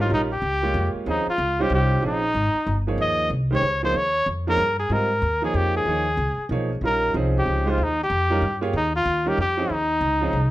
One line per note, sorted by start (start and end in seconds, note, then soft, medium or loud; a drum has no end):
0.00 0.11 F4 medium
0.00 0.10 A#4 medium
0.09 0.41 A#1 medium
0.09 0.28 G3 medium
0.09 0.29 C#4 medium
0.09 0.29 D#4 medium
0.09 0.29 F4 medium
0.09 0.29 A#4 medium
0.14 0.22 D#4 medium
0.33 0.92 G4 medium
0.42 0.74 C#2 medium
0.62 1.05 G#3 medium
0.62 1.04 A#3 medium
0.62 1.05 F4 medium
0.62 1.05 G4 medium
0.62 1.05 C#5 medium
0.74 0.93 F2 medium
0.94 muted upright bass stroke soft
1.06 1.25 D#2 medium
1.06 1.25 F3 medium
1.06 1.25 C4 medium
1.06 1.25 C#4 medium
1.06 1.25 D#4 medium
1.06 1.27 D#4 medium
1.06 1.26 G#4 medium
1.27 1.63 F4 medium
1.27 muted upright bass stroke soft
1.38 1.69 C#2 medium
1.59 2.01 G3 medium
1.59 2.01 C#4 medium
1.59 2.01 D#4 medium
1.59 2.01 F4 medium
1.59 1.72 G4 medium
1.59 2.02 C5 medium
1.70 2.01 C2 medium
1.74 2.03 G4 medium
2.02 2.34 A#1 medium
2.02 2.21 F3 medium
2.02 2.21 C4 medium
2.02 2.21 C#4 medium
2.02 2.21 D#4 medium
2.02 2.22 G#4 medium
2.07 2.85 D#4 medium
2.34 2.53 G#1 medium
2.54 muted upright bass stroke soft
2.67 2.97 G1 medium
2.87 3.29 F3 medium
2.87 3.29 A#3 medium
2.87 3.29 D#4 medium
2.87 3.29 G#4 medium
2.87 3.29 C#5 medium
2.98 3.29 D#2 medium
2.98 3.30 D#5 medium
3.30 3.61 C2 medium
3.51 3.62 D#3 medium
3.51 3.62 G#3 medium
3.51 3.62 C#4 medium
3.51 3.62 G4 medium
3.51 3.63 C5 medium
3.55 3.83 C#5 loud
3.61 3.93 C#2 medium
3.83 3.94 F3 medium
3.83 3.94 A#3 medium
3.83 3.94 D#4 medium
3.83 3.94 G#4 medium
3.83 3.98 C5 medium
3.83 3.95 C#5 medium
3.94 4.25 D#2 medium
3.94 4.28 C#5 loud
4.26 4.57 F2 medium
4.47 4.58 F3 medium
4.47 4.58 A#3 medium
4.47 4.58 D#4 medium
4.47 4.59 G#4 medium
4.47 4.78 A#4 medium
4.47 4.59 C#5 medium
4.57 4.89 G2 medium
4.79 4.94 G#4 medium
4.89 5.21 G#2 medium
4.89 5.08 G3 medium
4.89 5.09 C4 medium
4.89 5.09 F4 medium
4.89 5.09 A#4 medium
4.89 5.44 A#4 medium
4.89 5.09 D#5 medium
5.22 5.53 D#2 medium
5.42 5.84 F3 medium
5.42 5.84 A#3 medium
5.42 5.84 D#4 medium
5.42 5.85 G#4 medium
5.42 5.59 G#4 medium
5.42 5.85 C#5 medium
5.54 5.85 F2 medium
5.54 5.76 G4 medium
5.77 6.48 G#4 medium
5.85 6.17 D#2 medium
5.85 6.05 F3 medium
5.85 6.05 A#3 medium
5.85 6.05 D#4 soft
5.85 6.05 G#4 medium
5.85 6.06 C#5 medium
6.17 6.36 C#2 medium
6.37 muted upright bass stroke soft
6.49 6.81 B1 medium
6.49 6.69 F3 medium
6.49 6.69 A#3 medium
6.49 6.69 D#4 medium
6.49 6.69 G#4 medium
6.49 6.69 C#5 medium
6.81 7.13 A#1 medium
6.81 7.13 G3 medium
6.81 7.14 C#4 soft
6.81 7.14 D#4 soft
6.81 7.14 F4 medium
6.81 7.14 A#4 medium
6.86 7.14 A#4 medium
7.14 7.45 C2 medium
7.14 7.62 F3 medium
7.14 7.63 C4 medium
7.14 7.63 C#4 medium
7.14 7.63 D#4 medium
7.14 7.63 G#4 medium
7.39 7.71 G4 medium
7.46 7.77 C#2 medium
7.66 7.77 G#3 medium
7.66 7.77 D#4 medium
7.66 7.78 F4 medium
7.66 7.78 G4 medium
7.66 7.78 C5 medium
7.70 7.85 F4 medium
7.78 8.09 D#2 medium
7.83 8.01 D#4 medium
8.03 8.61 G4 medium
8.10 8.41 F2 medium
8.30 8.41 G3 medium
8.30 8.41 C#4 medium
8.30 8.41 D#4 medium
8.30 8.42 F4 medium
8.30 8.42 A#4 medium
8.42 8.73 G2 medium
8.61 8.73 A#3 medium
8.61 8.73 F4 medium
8.61 8.73 G4 medium
8.61 8.73 G#4 medium
8.61 8.73 C#5 medium
8.73 9.05 D#2 medium
8.73 8.94 D#4 medium
8.96 9.30 F4 medium
9.05 9.37 D#2 medium
9.25 9.37 G3 medium
9.25 9.37 C#4 medium
9.25 9.37 D#4 medium
9.25 9.37 F4 medium
9.25 9.40 G4 medium
9.25 9.38 A#4 medium
9.37 9.69 F2 medium
9.37 9.73 G4 medium
9.57 9.69 F3 medium
9.57 9.69 C4 medium
9.57 9.69 C#4 medium
9.57 9.70 D#4 medium
9.57 9.70 G#4 medium
9.69 10.00 D#2 medium
9.69 10.51 D#4 medium
10.01 10.32 C#2 medium
10.21 10.33 F3 medium
10.21 10.33 C4 medium
10.21 10.33 C#4 medium
10.21 10.34 D#4 medium
10.21 10.34 G#4 medium
10.33 10.51 C2 medium